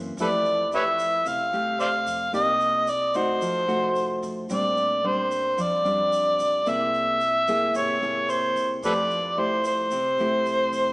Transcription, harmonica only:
0.21 0.28 A4 medium
0.21 0.29 B4 medium
0.21 0.70 D5 medium
0.75 0.83 B4 medium
0.75 0.83 C#5 medium
0.75 1.29 E5 medium
1.27 1.80 F5 medium
1.80 1.89 C5 medium
1.80 1.87 D5 medium
1.80 2.30 F5 loud
2.35 2.91 D#5 loud
2.89 3.18 D5 medium
3.16 4.23 C5 medium
4.52 5.09 D5 medium
5.07 5.63 C5 medium
5.62 6.70 D5 medium
6.69 7.76 E5 loud
7.77 8.32 C#5 medium
8.31 8.70 C5 medium
8.85 8.92 A4 medium
8.85 8.93 B4 medium
8.85 9.41 D5 loud
9.39 9.65 C5 medium
9.67 10.93 C5 medium

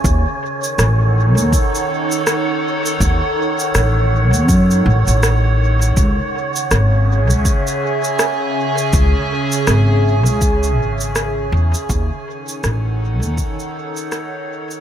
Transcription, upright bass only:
0.04 0.24 D#2 loud
0.78 1.37 A1 medium
1.37 1.51 D#2 loud
3.00 3.20 D#2 medium
3.75 4.34 A1 medium
4.34 4.49 D#2 loud
4.49 4.82 F#2 medium
4.86 5.05 A1 loud
5.07 5.94 A1 medium
5.97 6.16 C#2 medium
6.71 7.30 G#1 medium
7.30 7.43 C#2 loud
8.93 9.12 C#2 loud
9.68 10.26 G#1 medium
10.26 10.78 C#2 loud
10.78 11.50 G#1 medium
11.52 11.72 E2 medium
11.89 12.09 D#2 loud
12.64 13.22 A1 medium
13.22 13.36 D#2 loud

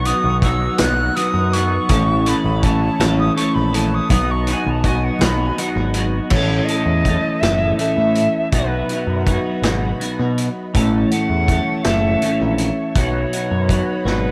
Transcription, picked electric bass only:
0.00 0.12 B1 medium
0.24 0.67 B1 medium
0.80 1.09 B1 loud
1.34 1.77 F#2 medium
1.89 2.32 A1 medium
2.44 2.88 A1 loud
3.00 3.29 A1 medium
3.56 3.99 A#1 medium
4.10 4.53 B1 loud
4.66 5.09 B1 loud
5.21 5.50 B1 medium
5.76 6.19 G#1 medium
6.30 6.60 A1 medium
6.86 7.15 E2 medium
7.42 7.71 F#1 loud
7.98 8.27 A2 medium
8.52 8.82 B1 medium
9.07 9.37 F#2 medium
9.62 9.92 G#1 loud
10.19 10.48 B2 medium
10.75 11.04 A1 medium
11.30 11.59 E2 medium
11.86 12.14 F#1 loud
12.41 12.70 A#1 medium
12.95 13.24 B1 medium
13.51 13.80 F#2 medium
14.05 14.31 G#1 loud

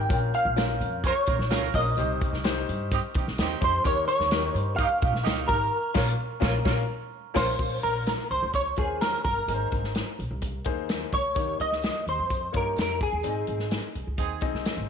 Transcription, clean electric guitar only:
0.00 0.30 G5 loud
0.35 1.06 F5 loud
1.07 1.75 C#5 medium
1.75 2.64 D#5 medium
3.64 3.86 C5 medium
3.87 4.07 C#5 medium
4.08 4.59 C#5 loud
4.59 4.76 C5 loud
4.76 5.47 F5 loud
5.48 6.38 A#4 medium
7.36 7.83 C5 loud
7.83 8.31 A#4 medium
8.31 8.54 C5 medium
8.55 8.79 C#5 medium
8.79 9.02 G#4 medium
9.01 9.23 A#4 medium
9.24 10.15 A#4 medium
11.14 11.61 C#5 medium
11.61 12.08 D#5 medium
12.09 12.52 C5 medium
12.57 12.79 A#4 medium
12.81 13.01 A#4 medium
13.03 14.89 G#4 medium

